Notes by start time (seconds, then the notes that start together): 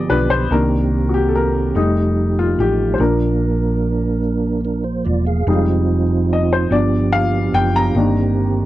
Already playing: D3 F3 B3 G4 D5 D#5 G5
0.09 B1 F3 B3 D4 B4
0.30 C5
0.51 C2 D#3 A#3 C4 D4 G4 A#4
1.09 F#4
1.14 G4
1.28 A4
1.35 A#4
1.75 F1 F3 G3 A3 D#4 G4
1.83 A3
2.39 F4
2.59 A1 G4
2.94 C5
2.98 A#1 F3 A#3 D4 A#4
4.65 D4 A#4
4.84 C5
5.05 E1 F4 D5
5.26 G#4 F5
5.47 F1 F3 G3 G#3 C4 D#4 G4
5.54 F4
6.33 D#5
6.53 C5
6.70 G1 F3 B3 D4 F#4 D5
6.78 G4
7.12 F5
7.53 F#1 G5
7.76 A#5
7.95 G1 D#3 A#3 C4 D4 G4